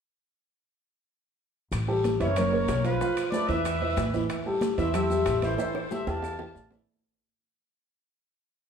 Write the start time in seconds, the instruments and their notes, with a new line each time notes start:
1.72 upright bass A1, high bongo, high conga, high timbale, long guiro, claves, maracas
1.88 upright piano G3 G4 A4, high bongo, high conga
2.04 high bongo, high conga, high timbale, short guiro, maracas
2.20 upright bass F#1, upright piano E3 E4 E5, trumpet section A#4 C#5, high conga, high timbale, short guiro, maracas
2.36 upright piano A#3 A#4 C#5, high bongo, high conga, low conga, high timbale, long guiro, claves, maracas
2.52 upright piano A#3 A#4 C#5, high bongo
2.68 upright bass B1, high bongo, low bongo, high timbale, low timbale, short guiro, claves, maracas
2.84 upright piano F3 F4 F5, trumpet section F4 B4, high bongo, high conga, high timbale, short guiro, maracas
3.01 upright piano F3 F4 F5, high bongo, high conga, long guiro, maracas
3.17 high conga, high timbale, claves, maracas
3.31 upright piano A3 A4 B4, trumpet section B4 D5, high bongo, high conga, short guiro, maracas
3.48 upright bass E2, upright piano E3 E4 E5, trumpet section B4 E5, high bongo, high conga, high timbale, short guiro, maracas
3.65 high bongo, high conga, high timbale, long guiro, claves, maracas
3.80 upright piano E3 E4 E5, high bongo, high conga
3.97 upright bass A1, high bongo, low bongo, high conga, high timbale, short guiro, maracas
4.13 upright piano E3 E4 E5, high bongo, high conga, short guiro, maracas
4.29 high bongo, high conga, high timbale, long guiro, claves, maracas
4.46 upright piano G3 G4 A4, high bongo, high conga
4.61 high bongo, high conga, high timbale, short guiro, maracas
4.78 upright bass E2, upright piano E3 E4 E5, trumpet section C5 E5, high conga, high timbale, short guiro, maracas
4.93 upright piano G3 G4 A4, high bongo, high conga, low conga, high timbale, long guiro, claves, maracas
5.10 upright piano G3 G4 A4, high bongo, high conga, maracas
5.26 upright bass A1, high bongo, low bongo, high timbale, short guiro, claves, maracas
5.42 upright piano E3 E4 E5, trumpet section A4 C5, high bongo, high conga, high timbale, short guiro, maracas
5.58 upright piano E3 E4 E5, high bongo, high conga, high timbale, long guiro, maracas
5.75 high bongo, high conga, high timbale, claves
5.91 upright piano G3 G4 A4, trumpet section C5 E5, low bongo, high conga, short guiro, maracas
6.07 upright bass E2, upright piano E3 G4 G5, trumpet section F5 A5, low bongo, low timbale, short guiro, maracas
6.22 high conga, low timbale, long guiro, claves, maracas
6.39 upright piano E3 G4 G5, low bongo, low timbale
6.55 upright bass A1, high conga, low timbale, short guiro, maracas
6.71 upright piano E3 E4 E5, low bongo, high conga, low timbale, short guiro, maracas